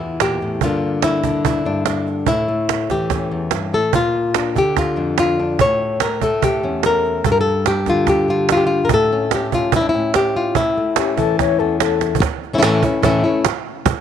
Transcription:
Already playing: E3 E4
0.00 E2
0.20 A#2 G4, cajon slap
0.41 A2, cajon slap
0.61 G2 D3 A#3 F4, cajon bass
0.65 D4
1.02 E4, cajon slap
1.24 D3 D4, cajon bass
1.45 E4, cajon bass
1.65 G2 D4
1.86 D4, cajon slap
2.07 cajon slap
2.26 A2 E4, cajon bass
2.48 A3
2.69 cajon slap
2.90 E3 G4, cajon bass, cajon slap
3.10 C#4, cajon bass, cajon slap
3.31 E2
3.51 G2, cajon slap
3.73 A2 A4, cajon slap
3.93 A#2 F4, cajon bass
4.34 D4, cajon slap
4.55 D3 G4, cajon bass
4.77 F4, cajon bass, cajon slap
4.96 F2 D4
5.18 F4, cajon slap
5.40 D4
5.59 A2 C#5, cajon bass
6.00 A#4, cajon slap
6.21 A3 A4, cajon bass
6.42 G4, cajon bass
6.63 E2 C#4
6.83 A#4, cajon slap
7.05 cajon slap
7.24 G2 A4, cajon bass
7.32 A#4
7.41 A4
7.66 G4, cajon slap
7.86 D3 F4, cajon bass, cajon slap
8.07 G4, cajon bass, cajon slap
8.28 D3 F4
8.49 F4, cajon slap
8.57 G4
8.67 F4, cajon slap
8.85 A#4
8.89 A2, cajon bass
8.94 A4
9.12 C#4
9.31 G4, cajon slap
9.52 C#4 F4, cajon bass
9.72 E4, cajon bass
9.81 D4
9.89 E4
9.94 A2 C#4
10.14 G4, cajon slap
10.36 F4
10.55 A2 E4, cajon bass
10.77 A3
10.96 C#4 G4, cajon slap
11.17 E3 A4, cajon bass
11.39 C#5, cajon bass, cajon slap
11.59 E2 C#4 A4
11.80 A3 A4, cajon slap
12.01 cajon slap
12.15 cajon bass
12.20 muted nylon-string guitar stroke, cajon bass, cajon slap
12.43 cajon slap
12.53 E3 A3 C#4 E4
12.58 E3 A3 C#4 E4
12.62 A2 E3 A3 C#4 E4, cajon slap
12.82 A3 C#4 E4, cajon bass
13.03 A2 E3 A3 C#4 E4, cajon bass
13.24 A3 C#4 E4, cajon slap
13.45 muted nylon-string guitar stroke, cajon slap
13.86 muted nylon-string guitar stroke, cajon bass

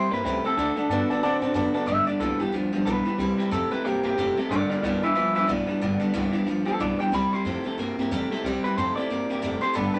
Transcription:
Already playing: G3 C4 E4 G4 C5
0.11 G2 C3 A#3 G4 B4 C5 E5 G5
0.15 C4 E4
0.24 C#2 C3 G3 A3 C4 E4 G4 C5 E5 G5
0.44 C3 A3 E4 G4 A4 C5 G5, muted upright bass stroke
0.48 C4
0.57 D2 D3 A3 D4 F#4 A4 D5 F#5 A5
0.76 D3 A3 F#4 A4 D5 F#5 A5
0.80 D4
0.89 G2 D3 A3 B3 D4 F#4 A4 D5 F#5 A5
1.08 D3 B3 A4 D5 F#5 A5, muted upright bass stroke
1.12 D4 F#4
1.21 A2 D3 A3 C4 D4 D5 F#5 A5
1.25 F#4 A4
1.41 A2 D3 C4 F#4 A4 D5 F#5 A5
1.45 D4
1.54 F#2 D3 A3 B3 D4 F#4 A4 D5 F#5 A5
1.74 D3 B3 D4 F#4 A4 D5 F#5 A5
1.86 G1 G2 D3 G3 B3 D4 G4 E5
2.06 G2 D3 G3 B3 D4 G4 D5
2.19 C2 G2 D3 E3 G3 B3 D4 G4 A4
2.39 G2 E3 G3 B3 D4 G4
2.51 D2 G2 F3 G3 B3 D4
2.56 G4
2.72 D2 G2 F3 B3 D4 G4
2.76 G3
2.85 B1 G2 D3 E3 G3 B3 D4 G4 B4
3.05 G2 E3 G3 B3 D4 G4
3.18 C2 C3 G3 C4 E4 G4
3.38 C3 G3 E4 G4
3.42 C4
3.51 F2 C3 G3 A3 C4 E4 G4 A4
3.71 C3 A3 C4 E4 G4 B4, muted upright bass stroke
3.84 G2 C3 G3 A#3 C4 E4 G4
4.03 G2 C3 A#3 C4 E4 G4
4.17 F1 C3 G3 A3 C4 E4 G4
4.37 C3 A3 C4 E4 G4
4.50 G1 G2 D3 G3 B3 D4 A#4 D5
4.54 G4
4.69 G2 D3 D4 G4 A#4 D5, muted upright bass stroke
4.73 G3 B3
4.83 C2 G2 D3 E3 G3 B3 D4 G4 A#4 D5
5.03 G2 E3 G3 B3 D4 G4 B4 E5, muted upright bass stroke
5.15 D2 G2 F3 G3 B3 D4 G4 B4 E5
5.35 D2 G2 F3 G3 B3 D4 G4 B4 E5
5.47 B1 G2 D3 E3 G3 B3 D4 G4 D5
5.67 G2 E3 G3 B3 D4 G4
5.81 G1 G2 D3 G3 B3 D4 G4
6.00 G2 D3 G3 B3 D4 G4, muted upright bass stroke
6.13 C2 G2 D3 E3 G3 B3 D4 G4
6.32 G2 E3 B3 D4 G4
6.36 G3
6.46 D2 G2 F3 G3 B3 D4
6.51 G4
6.65 D2 G2 F3 G3 B3 D4 G4 A4
6.79 B1 G2 D3 E3 G3 B3 D4 G4 D5
6.98 G2 E3 B3 D4 G4 G5, muted upright bass stroke
7.03 G3
7.12 C2 C3 G3 C4 E4 G4 B5
7.32 C3 G3 C4 E4 G4 C6, muted upright bass stroke
7.45 F2 C3 G3 A3 C4 E4 G4
7.64 C3 A3 C4 E4 G4, muted upright bass stroke
7.77 G2 C3 G3 A#3 C4 E4
7.82 G4
7.97 G2 C3 A#3 E4 G4
8.02 C4
8.11 E2 C3 G3 A3 C4 E4 G4
8.30 C3 A3 E4 G4, muted upright bass stroke
8.36 C4
8.44 C2 C3 G3 C4 E4
8.48 G4
8.64 C3 G3 C4 E4 G4 B4
8.77 F2 C3 G3 A3 C4 E4 G4 C5
8.96 C3 A3 E4 G4 D5
9.00 C4
9.10 G2 C3 G3 A#3 C4 E4 G4
9.29 G2 C3 A#3 C4 E4 G4
9.42 F1 C3 G3 A3 C4 E4 G4
9.61 C3 A3 C4 E4 G4 C5
9.73 G1 G2 D3 G3 B3 D4 G4 A4 D5 G5 B5
9.94 G2 D3 B3 D4 G4 B4 D5 G5 B5, muted upright bass stroke

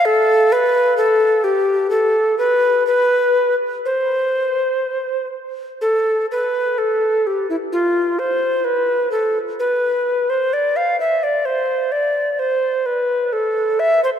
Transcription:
0.05 A4
0.52 B4
0.97 A4
1.44 G4
1.91 A4
2.39 B4
2.87 B4
3.85 C5
5.81 A4
6.31 B4
6.78 A4
7.27 G4
7.50 E4
7.72 F4
8.19 C5
8.64 B4
9.12 A4
9.59 B4
10.30 C5
10.53 D5
10.76 F5
11.00 E5
11.23 D5
11.45 C5
11.92 D5
12.39 C5
12.86 B4
13.33 A4
13.80 E5
14.04 C5

